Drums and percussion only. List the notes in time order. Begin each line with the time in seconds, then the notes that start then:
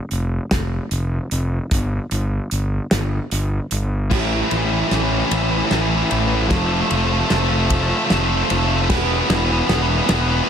0.11 closed hi-hat
0.51 kick, snare, closed hi-hat
0.91 closed hi-hat
1.31 closed hi-hat
1.71 kick, closed hi-hat
2.11 closed hi-hat
2.51 closed hi-hat
2.91 snare, closed hi-hat
3.31 closed hi-hat
3.71 closed hi-hat
4.11 kick, snare, crash
4.51 ride
4.91 snare, ride
5.31 ride
5.71 snare, ride
6.11 ride
6.50 kick, snare, ride
6.91 ride
7.30 snare, ride
7.70 kick, ride
8.10 snare, ride
8.50 ride
8.90 kick, snare, crash
9.30 snare, ride
9.69 snare, ride
10.09 snare, ride